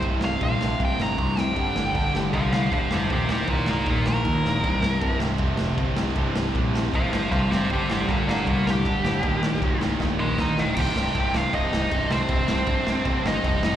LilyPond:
<<
  \new Staff \with { instrumentName = "Lead electric guitar" } { \time 4/4 \key c \minor \tempo 4 = 156 << { r8 f''8 f''4 g''8 bes''4 g''8~ | g''4 g''8 r8 f''8 f''8 f''8 c''8 | c''8 c''8 bes'8 bes'8 bes'8 bes'4.~ | bes'4. r2 r8 |
r2 f''8 f''8 f''8 c''8 | c''8 c''8 bes'8 bes'8 bes'8 g'4.~ | g'4. r4 c'''8 bes''8 g''8 | r1 |
r1 | } \\ { r1 | r2 c''8 c''8 c''8 g'8 | g'8 g'8 f'8 f'8 f'8 r4. | r1 |
r2 c''8 c''8 c''8 g'8 | g'8 g'8 f'8 f'8 f'8 r4. | r2 r8 <ees' ees''>4. | <g' g''>4. <f' f''>8 <ees' ees''>4. <c' c''>8~ |
<c' c''>2~ <c' c''>8 <ees' ees''>4. | } >> }
  \new Staff \with { instrumentName = "Distorted electric guitar" } { \clef bass \time 4/4 \key c \minor <c, g, c>1 | <g, d g>1 | <ees, bes, ees>1 | <c, g, c>1 |
<c, g, c>1 | <g, d g>1 | <ees, bes, ees>1 | r1 |
r1 | }
  \new Staff \with { instrumentName = "Overdriven electric guitar" } { \clef bass \time 4/4 \key c \minor <c, g, c>4 <c, g, c>8 <c, g, c>8 <c, g, c>4 <c, g, c>8 <c, g, c>8 | <g, d g>4 <g, d g>8 <g, d g>8 <g, d g>4 <g, d g>8 <g, d g>8 | <ees, bes, ees>4 <ees, bes, ees>8 <ees, bes, ees>8 <ees, bes, ees>4 <ees, bes, ees>8 <ees, bes, ees>8 | <c, g, c>4 <c, g, c>8 <c, g, c>8 <c, g, c>4 <c, g, c>8 <c, g, c>8 |
<c, g, c>4 <c, g, c>8 <c, g, c>8 <c, g, c>4 <c, g, c>8 <c, g, c>8 | <g, d g>4 <g, d g>8 <g, d g>8 <g, d g>4 <g, d g>8 <g, d g>8 | <ees, bes, ees>4 <ees, bes, ees>8 <ees, bes, ees>8 <ees, bes, ees>4 <ees, bes, ees>8 <ees, bes, ees>8 | <c, g, c>8 <c, g, c>8 <c, g, c>8 <c, g, c>8 <c, g, c>8 <c, g, c>8 <c, g, c>8 <c, g, c>8 |
<c, g, c>8 <c, g, c>8 <c, g, c>8 <c, g, c>8 <c, g, c>8 <c, g, c>8 <c, g, c>8 <c, g, c>8 | }
  \new Staff \with { instrumentName = "Overdriven electric guitar" } { \clef bass \time 4/4 \key c \minor <c, g, c>4 <c, g, c>8 <c, g, c>8 <c, g, c>4 <c, g, c>8 <c, g, c>8 | <g, d g>4 <g, d g>8 <g, d g>8 <g, d g>4 <g, d g>8 <g, d g>8 | <ees, bes, ees>4 <ees, bes, ees>8 <ees, bes, ees>8 <ees, bes, ees>4 <ees, bes, ees>8 <ees, bes, ees>8 | <c, g, c>4 <c, g, c>8 <c, g, c>8 <c, g, c>4 <c, g, c>8 <c, g, c>8 |
<c, g, c>4 <c, g, c>8 <c, g, c>8 <c, g, c>4 <c, g, c>8 <c, g, c>8 | <g, d g>4 <g, d g>8 <g, d g>8 <g, d g>4 <g, d g>8 <g, d g>8 | <ees, bes, ees>4 <ees, bes, ees>8 <ees, bes, ees>8 <ees, bes, ees>4 <ees, bes, ees>8 <ees, bes, ees>8 | <c, g, c>8 <c, g, c>8 <c, g, c>8 <c, g, c>8 <c, g, c>8 <c, g, c>8 <c, g, c>8 <c, g, c>8 |
<c, g, c>8 <c, g, c>8 <c, g, c>8 <c, g, c>8 <c, g, c>8 <c, g, c>8 <c, g, c>8 <c, g, c>8 | }
  \new Staff \with { instrumentName = "Picked electric bass" } { \clef bass \time 4/4 \key c \minor c,,4 bes,,4 c,,8 g,,8 c,8 c,,8 | g,,8 g,,8 g,,8 g,,8 c,8 c,8 d,,8 f,,8 | ees,,4 c,,4 ees,,8 bes,,8 ees,8 ees,,8 | c,,8 c,,8 c,,8 c,,8 f,,8 f,,8 g,,8 c,,8 |
c,,4 bes,,4 c,,8 g,,8 c,8 fis,,8 | g,,8 g,,8 g,,8 g,,8 c,8 c,8 d,,8 g,,8 | ees,,4 c,,4 ees,,8 bes,,8 ees,8 ees,,8 | c,,8 c,,8 c,,8 c,,8 c,,8 c,,8 c,,8 c,8 |
c,,8 c,,8 c,,4 c,,8 g,,8 f,,8 f,,8 | }
  \new DrumStaff \with { instrumentName = "Drums" } \drummode { \time 4/4 <cymc bd>8 sn8 <cymc bd>8 sn8 <cymc bd>8 sn8 <cymc bd>8 sn8 | <cymc bd>8 sn8 <cymc bd>8 sn8 <cymc bd>8 sn8 <cymc bd>8 sn8 | <cymc bd>8 sn8 <cymc bd>8 sn8 <cymc bd>8 sn8 <cymc bd>8 sn8 | <cymc bd>8 sn8 <cymc bd>8 sn8 <cymc bd>8 sn8 <cymc bd>8 sn8 |
<cymc bd>8 sn8 <cymc bd>8 sn8 <cymc bd>8 sn8 <cymc bd>8 sn8 | <cymc bd>8 sn8 <cymc bd>8 sn8 <cymc bd>8 sn8 <cymc bd>8 sn8 | <cymc bd>8 sn8 <cymc bd>8 sn8 <bd sn>4 <bd sn>8 sn8 | <cymc bd>8 sn8 <cymc bd>8 sn8 <cymc bd>8 sn8 <cymc bd>8 sn8 |
<cymc bd>8 sn8 <cymc bd>8 sn8 <cymc bd>8 sn8 <cymc bd>8 sn8 | }
>>